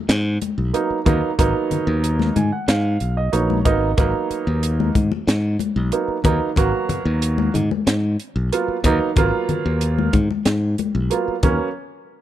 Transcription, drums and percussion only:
0.09 snare loud
0.09 closed hi-hat medium
0.41 closed hi-hat medium
0.41 high conga medium
0.74 closed hi-hat medium
1.06 kick medium
1.06 closed hi-hat medium
1.06 low conga medium
1.39 kick loud
1.39 closed hi-hat medium
1.39 low conga medium
1.71 closed hi-hat medium
1.71 low conga medium
2.04 closed hi-hat medium
2.19 snare soft
2.19 high conga medium
2.36 closed hi-hat medium
2.36 high conga medium
2.36 low conga medium
2.68 snare loud
2.68 closed hi-hat medium
3.00 closed hi-hat medium
3.33 closed hi-hat medium
3.50 high conga medium
3.65 kick medium
3.65 closed hi-hat medium
3.98 kick medium
3.98 closed hi-hat medium
3.98 low conga medium
4.31 closed hi-hat medium
4.63 closed hi-hat medium
4.80 high conga medium
4.95 kick medium
4.95 closed hi-hat soft
4.95 high conga medium
4.95 low conga medium
5.12 high conga medium
5.28 snare loud
5.28 closed hi-hat medium
5.59 closed hi-hat medium
5.59 high conga medium
5.92 closed hi-hat medium
6.24 kick medium
6.24 closed hi-hat medium
6.24 low conga medium
6.56 kick loud
6.56 closed hi-hat medium
6.56 low conga medium
6.89 closed hi-hat medium
6.89 low conga medium
7.22 closed hi-hat medium
7.38 high conga medium
7.55 closed hi-hat medium
7.55 high conga medium
7.55 low conga medium
7.71 high conga medium
7.87 snare loud
7.87 closed hi-hat medium
8.20 closed hi-hat medium
8.53 closed hi-hat medium
8.84 kick medium
8.84 closed hi-hat medium
8.84 low conga medium
9.16 kick loud
9.16 closed hi-hat medium
9.16 low conga medium
9.49 closed hi-hat medium
9.49 low conga medium
9.81 closed hi-hat medium
9.98 high conga medium
10.13 kick medium
10.13 closed hi-hat soft
10.13 high conga medium
10.13 low conga medium
10.31 high conga medium
10.45 snare loud
10.45 closed hi-hat medium
10.78 closed hi-hat medium
10.78 high conga medium
11.11 closed hi-hat medium
11.43 kick medium
11.43 closed hi-hat medium
11.43 low conga medium

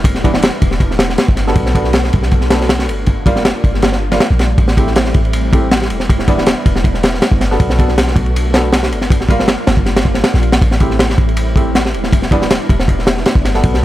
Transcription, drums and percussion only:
0.04 kick loud
0.04 ride medium
0.15 snare soft
0.24 kick medium
0.24 ride medium
0.34 snare medium
0.42 snare loud
0.42 ride loud
0.62 kick loud
0.62 ride medium
0.71 snare soft
0.80 kick medium
0.80 ride medium
0.91 snare soft
0.99 snare loud
0.99 ride medium
1.10 snare soft
1.18 snare loud
1.18 ride medium
1.29 kick medium
1.37 snare soft
1.37 ride medium
1.48 snare soft
1.56 kick loud
1.56 ride medium
1.66 snare medium
1.75 kick medium
1.75 ride medium
1.84 snare soft
1.93 snare loud
1.93 ride medium
2.04 snare soft
2.13 kick medium
2.13 ride medium
2.23 snare soft
2.31 kick medium
2.31 ride medium
2.41 snare soft
2.50 snare loud
2.50 ride medium
2.61 snare medium
2.69 snare loud
2.69 ride medium
2.79 snare medium
2.89 ride medium
3.06 kick medium
3.06 ride medium
3.26 kick loud
3.26 ride medium
3.36 snare soft
3.45 snare loud
3.45 ride medium
3.64 kick medium
3.64 ride medium
3.74 snare soft
3.82 snare loud
3.82 ride medium
3.92 snare medium
4.12 snare soft
4.12 ride medium
4.20 snare loud
4.20 ride medium
4.39 snare medium
4.39 ride medium
4.58 kick loud
4.58 ride medium
4.68 snare medium
4.77 kick medium
4.77 ride medium
4.87 snare soft
4.96 snare loud
4.96 ride medium
5.05 snare medium
5.14 kick loud
5.14 ride medium
5.25 ride soft
5.33 ride loud
5.53 kick loud
5.53 ride medium
5.71 snare loud
5.71 ride medium
5.82 snare medium
5.90 ride medium
6.00 snare soft
6.10 kick loud
6.10 ride medium
6.19 snare soft
6.28 kick loud
6.28 ride medium
6.38 snare soft
6.46 snare loud
6.46 ride medium
6.66 kick medium
6.66 ride medium
6.76 snare medium
6.84 kick medium
6.84 ride medium
6.94 snare soft
7.03 snare loud
7.03 ride medium
7.14 snare soft
7.22 snare loud
7.22 ride medium
7.32 kick loud
7.41 snare medium
7.41 ride medium
7.52 snare soft
7.60 kick loud
7.60 ride medium
7.70 snare medium
7.79 kick loud
7.79 ride medium
7.88 snare soft
7.98 snare loud
7.98 ride medium
8.07 snare medium
8.16 kick medium
8.16 ride medium
8.26 ride soft
8.36 ride medium
8.54 snare loud
8.54 ride medium
8.73 snare loud
8.73 ride medium
8.83 snare medium
8.92 ride medium
9.01 snare soft
9.10 kick loud
9.10 ride medium
9.21 snare soft
9.29 kick loud
9.29 ride medium
9.40 snare medium
9.48 snare loud
9.48 ride medium
9.67 snare loud
9.67 ride medium
9.77 kick medium
9.86 snare medium
9.86 ride medium
9.96 snare loud
9.96 ride medium
10.05 kick medium
10.14 snare medium
10.14 ride medium
10.24 snare loud
10.24 ride medium
10.34 snare soft
10.43 ride medium
10.52 snare loud
10.52 ride medium
10.62 kick loud
10.62 ride medium
10.71 snare medium
10.80 kick loud
10.80 ride medium
10.90 snare soft
10.99 snare loud
10.99 ride medium
11.10 snare medium
11.18 kick loud
11.18 ride medium
11.29 ride soft
11.37 ride loud
11.56 kick loud
11.56 ride medium
11.75 snare loud
11.75 ride medium
11.85 snare medium
11.94 ride medium
12.04 snare soft
12.13 kick loud
12.13 ride medium
12.22 snare soft
12.31 kick medium
12.31 ride medium
12.42 snare medium
12.50 snare loud
12.50 ride loud
12.69 kick medium
12.69 ride medium
12.80 snare medium
12.88 kick medium
12.88 ride medium
12.99 snare soft
13.07 snare loud
13.07 ride medium
13.17 snare soft
13.26 snare loud
13.26 ride medium
13.35 kick loud
13.45 snare medium
13.45 ride medium
13.54 snare soft
13.63 kick loud
13.63 ride medium
13.74 snare medium

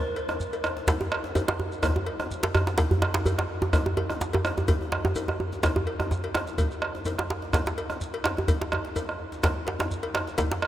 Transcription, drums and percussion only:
0.06 djembe slap soft
0.16 cowbell soft
0.16 shekere soft
0.29 bombo rim medium
0.29 djembe slap medium
0.29 djembe tone medium
0.40 shekere medium
0.53 cowbell soft
0.53 djembe slap soft
0.53 shekere soft
0.64 bombo rim loud
0.64 djembe tone medium
0.64 shekere soft
0.77 bombo rim soft
0.77 djembe slap medium
0.87 bombo low loud
0.87 cowbell medium
0.87 djembe slap loud
0.87 djembe bass medium
0.87 shekere medium
1.00 djembe tone medium
1.12 bombo rim loud
1.24 djembe slap medium
1.35 bombo rim soft
1.35 cowbell medium
1.35 djembe tone medium
1.35 shekere medium
1.48 bombo rim medium
1.48 djembe slap loud
1.48 djembe slap soft
1.60 bombo rim soft
1.60 djembe tone medium
1.72 shekere soft
1.83 bombo rim loud
1.83 bombo low loud
1.83 cowbell medium
1.83 djembe tone medium
1.83 djembe bass medium
1.83 shekere medium
1.96 bombo rim soft
1.96 djembe tone medium
2.06 cowbell medium
2.06 djembe slap soft
2.20 bombo rim medium
2.20 djembe slap medium
2.20 djembe tone medium
2.31 djembe slap soft
2.31 shekere medium
2.43 cowbell medium
2.43 djembe slap loud
2.54 bombo rim loud
2.54 djembe tone medium
2.54 djembe bass medium
2.54 shekere soft
2.67 djembe slap medium
2.67 shekere soft
2.78 bombo low medium
2.78 cowbell medium
2.78 djembe slap loud
2.78 djembe bass medium
2.78 shekere medium
2.91 djembe tone medium
2.91 djembe bass medium
3.02 bombo rim loud
3.02 djembe slap medium
3.14 djembe slap loud
3.14 djembe slap medium
3.26 bombo rim soft
3.26 cowbell medium
3.26 djembe tone medium
3.26 djembe bass medium
3.26 shekere medium
3.38 bombo rim medium
3.38 djembe slap medium
3.38 djembe slap soft
3.49 bombo rim soft
3.62 djembe slap medium
3.62 djembe tone loud
3.73 bombo rim medium
3.73 bombo low loud
3.73 cowbell medium
3.73 djembe tone medium
3.73 djembe bass medium
3.73 shekere medium
3.86 bombo rim soft
3.86 djembe tone medium
3.97 cowbell medium
3.97 djembe slap soft
3.97 djembe tone medium
4.10 bombo rim medium
4.10 djembe slap medium
4.10 djembe tone medium
4.21 djembe slap soft
4.21 djembe slap medium
4.21 shekere medium
4.33 cowbell medium
4.33 djembe tone loud
4.45 bombo rim loud
4.45 djembe tone medium
4.45 shekere soft
4.57 djembe slap medium
4.57 djembe tone medium
4.57 shekere soft
4.68 bombo low loud
4.68 cowbell medium
4.68 djembe tone medium
4.68 djembe bass medium
4.68 shekere medium
4.81 djembe tone medium
4.92 bombo rim medium
4.92 djembe slap medium
5.05 djembe slap medium
5.05 djembe tone loud
5.15 bombo rim soft
5.15 cowbell soft
5.15 djembe tone medium
5.15 shekere medium
5.28 bombo rim medium
5.28 djembe slap soft
5.28 djembe tone medium
5.40 bombo rim soft
5.40 djembe tone medium
5.52 djembe slap medium
5.52 shekere soft
5.63 bombo rim loud
5.63 bombo low medium
5.63 cowbell soft
5.63 djembe slap medium
5.63 djembe tone medium
5.63 djembe bass medium
5.63 shekere medium
5.76 bombo rim soft
5.76 djembe tone loud
5.87 cowbell soft
5.87 djembe slap soft
6.00 bombo rim medium
6.00 djembe slap medium
6.00 djembe tone medium
6.11 djembe slap soft
6.11 djembe tone medium
6.11 shekere medium
6.24 cowbell soft
6.34 bombo rim loud
6.34 djembe slap medium
6.34 djembe tone medium
6.34 shekere soft
6.47 djembe slap medium
6.47 shekere soft
6.58 bombo rim soft
6.58 bombo low loud
6.58 cowbell medium
6.58 djembe slap soft
6.58 djembe bass medium
6.58 shekere medium
6.71 shekere soft
6.82 bombo rim medium
6.95 bombo rim soft
6.95 djembe slap medium
7.05 bombo rim soft
7.05 cowbell soft
7.05 djembe tone medium
7.05 shekere medium
7.19 bombo rim medium
7.19 djembe slap medium
7.30 djembe slap medium
7.42 bombo rim soft
7.42 djembe slap medium
7.53 bombo rim medium
7.53 bombo low loud
7.53 cowbell soft
7.53 djembe slap soft
7.53 djembe slap medium
7.53 djembe tone medium
7.53 djembe bass medium
7.53 shekere medium
7.66 djembe slap medium
7.66 shekere soft
7.78 cowbell soft
7.78 shekere soft
7.90 bombo rim medium
7.90 djembe slap medium
7.90 djembe tone medium
7.90 shekere soft
8.01 djembe slap soft
8.01 shekere medium
8.14 cowbell soft
8.24 bombo rim loud
8.24 djembe slap soft
8.24 djembe slap medium
8.24 djembe tone medium
8.37 bombo rim soft
8.37 djembe slap medium
8.37 djembe tone medium
8.48 bombo low loud
8.48 cowbell medium
8.48 djembe bass medium
8.48 shekere medium
8.61 djembe slap medium
8.72 bombo rim loud
8.72 djembe tone medium
8.85 djembe slap medium
8.96 bombo rim soft
8.96 cowbell medium
8.96 djembe tone medium
8.96 shekere medium
9.09 bombo rim medium
9.09 djembe slap soft
9.20 bombo rim soft
9.32 djembe slap medium
9.32 shekere soft
9.43 bombo rim loud
9.43 bombo low medium
9.43 cowbell medium
9.43 djembe slap medium
9.43 djembe tone medium
9.43 djembe bass medium
9.43 shekere medium
9.57 bombo rim soft
9.67 cowbell soft
9.67 djembe slap soft
9.67 djembe slap medium
9.79 bombo rim medium
9.79 djembe slap medium
9.79 djembe tone medium
9.91 djembe slap soft
9.91 shekere medium
10.03 cowbell medium
10.14 bombo rim loud
10.14 djembe slap medium
10.14 djembe tone medium
10.27 djembe slap medium
10.27 shekere soft
10.38 bombo low loud
10.38 cowbell medium
10.38 djembe slap medium
10.38 djembe bass medium
10.38 shekere medium
10.51 djembe slap medium
10.51 djembe tone medium
10.62 bombo rim loud

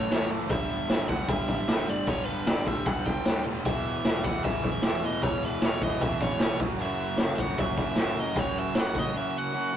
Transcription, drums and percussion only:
0.11 snare loud
0.11 open hi-hat medium
0.31 open hi-hat medium
0.50 kick loud
0.50 open hi-hat medium
0.69 open hi-hat medium
0.89 snare loud
0.89 open hi-hat medium
1.09 kick medium
1.09 open hi-hat medium
1.28 kick loud
1.28 open hi-hat medium
1.48 kick medium
1.48 open hi-hat medium
1.68 snare loud
1.68 open hi-hat medium
1.87 open hi-hat medium
2.07 kick loud
2.07 open hi-hat medium
2.27 open hi-hat medium
2.47 snare loud
2.47 open hi-hat medium
2.67 kick medium
2.67 open hi-hat medium
2.86 kick loud
2.86 open hi-hat medium
3.05 kick medium
3.05 open hi-hat medium
3.25 snare loud
3.25 open hi-hat medium
3.46 open hi-hat medium
3.65 kick loud
3.65 open hi-hat medium
3.86 open hi-hat medium
4.05 snare loud
4.05 open hi-hat medium
4.24 kick loud
4.24 open hi-hat medium
4.44 kick loud
4.44 open hi-hat medium
4.63 kick loud
4.63 open hi-hat medium
4.82 snare loud
4.82 open hi-hat medium
5.02 open hi-hat medium
5.22 kick loud
5.22 open hi-hat medium
5.42 open hi-hat medium
5.62 snare loud
5.62 open hi-hat medium
5.81 kick loud
5.81 open hi-hat medium
6.01 kick loud
6.01 open hi-hat medium
6.20 kick medium
6.20 open hi-hat medium
6.40 snare loud
6.40 open hi-hat medium
6.59 kick loud
6.59 open hi-hat medium
6.79 open hi-hat medium
6.99 open hi-hat medium
7.18 snare loud
7.18 open hi-hat medium
7.38 kick medium
7.38 open hi-hat medium
7.58 kick loud
7.58 open hi-hat medium
7.76 kick medium
7.76 open hi-hat medium
7.96 snare loud
7.96 open hi-hat medium
8.15 open hi-hat medium
8.35 kick loud
8.35 open hi-hat medium
8.55 open hi-hat medium
8.75 snare loud
8.75 open hi-hat medium
8.94 kick medium
8.94 open hi-hat medium

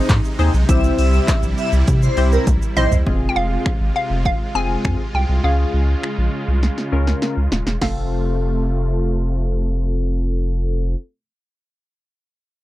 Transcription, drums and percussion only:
0.09 kick loud
0.09 clap loud
0.09 closed hi-hat medium
0.09 shaker medium
0.25 shaker medium
0.39 open hi-hat medium
0.39 shaker soft
0.54 shaker medium
0.69 kick loud
0.69 closed hi-hat medium
0.69 shaker medium
0.84 shaker medium
0.98 open hi-hat medium
0.98 shaker medium
1.13 shaker medium
1.28 kick loud
1.28 clap loud
1.28 closed hi-hat medium
1.28 shaker medium
1.43 shaker medium
1.58 open hi-hat medium
1.58 shaker medium
1.72 shaker medium
1.87 kick loud
1.87 closed hi-hat medium
1.87 shaker medium
2.02 shaker medium
2.17 open hi-hat medium
2.17 shaker medium
2.32 shaker medium
2.47 kick loud
2.47 closed hi-hat medium
2.47 high tom medium
2.47 shaker medium
2.62 shaker medium
2.77 mid tom loud
2.77 open hi-hat medium
2.77 shaker soft
2.92 floor tom loud
2.92 shaker medium
3.07 kick loud
3.66 finger snap loud
3.66 kick loud
4.25 kick loud
4.85 finger snap loud
4.85 kick loud
6.03 finger snap loud
6.63 snare medium
6.78 snare soft
7.07 snare medium
7.22 snare medium
7.52 snare medium
7.67 snare medium
7.81 kick medium
7.81 snare medium
7.81 crash medium

